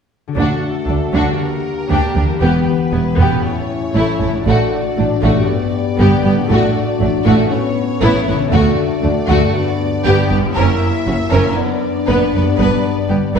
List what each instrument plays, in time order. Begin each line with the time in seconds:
0.28 harp D3 D4 F#4
0.33 double bass section D2, french horn section A3 F#4, harp A4, violin section A4
0.37 cello section D2, viola section D4, violin section F#4
0.86 double bass section D2, cello section D2, viola section D4, violin section D4
1.13 double bass section D2, cello section D2, viola section D4, violin section F#4
1.22 harp D3
1.26 harp D4
1.31 harp G4
1.36 french horn section A#3 G4, harp A#4
1.40 violin section A#4
1.89 cello section D2, double bass section D2, viola section D4, violin section G4
2.15 double bass section D2, cello section D2, viola section D4, violin section G4
2.23 harp E3
2.28 harp B3
2.33 harp G4
2.37 cello section E2, harp B4
2.41 double bass section E1, viola section B3, french horn section B3, violin section G4 B4
2.92 double bass section E1, cello section E2, viola section B3, violin section E4
3.17 double bass section E1, cello section E2, viola section B3, violin section G4
3.26 harp A2
3.31 harp C#4
3.35 harp E4
3.40 french horn section C#4 E4, harp A4
3.44 violin section C#5
3.94 double bass section A1, cello section A2, viola section A3, violin section E4
4.20 double bass section A1, cello section A2, viola section A3, violin section E4
4.28 harp A2
4.33 harp D4
4.37 harp F#4
4.42 double bass section A1, cello section A2, harp A4
4.46 viola section A3, french horn section D4 F#4, violin section F#4 D5
4.96 double bass section A1, cello section A2, viola section A3, violin section D4
5.22 double bass section A1, cello section A2, viola section A3, violin section F#4
5.29 harp G2
5.34 harp D4
5.39 harp G4
5.43 french horn section B3 G4, harp B4
5.98 double bass section G1, cello section G2, viola section B3, violin section G4
6.24 double bass section G1, cello section G2, viola section B3, violin section G4
6.32 harp A2
6.37 harp D4
6.41 harp F#4
6.46 cello section A2, viola section A3, french horn section D4 F#4, harp A4
6.50 double bass section A1, violin section F#4
7.00 double bass section A1, cello section A2, viola section A3, violin section D4
7.25 double bass section A1, cello section A2, viola section A3, violin section F#4
7.33 harp A2
7.38 harp C#4
7.42 harp E4
7.47 french horn section B3 C#4, harp B4
7.52 violin section C#5
8.01 double bass section A1, cello section A2, viola section B3, violin section E4
8.27 double bass section A1, cello section A2, viola section B3, violin section E4
8.35 harp D3
8.39 harp D4
8.44 harp F#4
8.48 french horn section A3 F#4, harp A4
8.52 cello section D2, double bass section D2, viola section A3, violin section F#4 D5
9.02 cello section D2, double bass section D2, viola section A3, violin section D4
9.28 cello section D2, double bass section D2, viola section A3, violin section F#4
9.36 harp G2
9.40 harp D4
9.45 harp G4
9.50 harp B4
9.54 french horn section B3 D4
10.04 double bass section G1, cello section G2, viola section B3, violin section G4
10.29 double bass section G1, cello section G2, viola section B3, violin section G4
10.37 harp F#2
10.43 harp A#3
10.47 harp E4
10.52 cello section F#2, violin section A#4 E5, harp C#5
10.56 double bass section F#1, french horn section A#3 E4, viola section C#4
11.06 double bass section F#1, cello section F#2, viola section C#4, violin section F#4
11.31 double bass section F#1, cello section F#2, viola section C#4, violin section A#4
11.39 harp F#2
11.44 harp B3
11.49 harp D4
11.53 french horn section B3 D4, harp B4
11.57 violin section D5
12.08 double bass section F#1, cello section F#2, viola section B3, violin section B4
12.33 double bass section F#1, cello section F#2, viola section B3, violin section B4
12.41 harp G2
12.46 harp B3
12.50 harp D4
12.54 cello section G2, viola section B3, harp B4
12.59 double bass section G1, violin section B4
13.08 double bass section G1, cello section G2, viola section B3, violin section G4
13.34 double bass section G1, cello section G2, viola section B3, violin section B4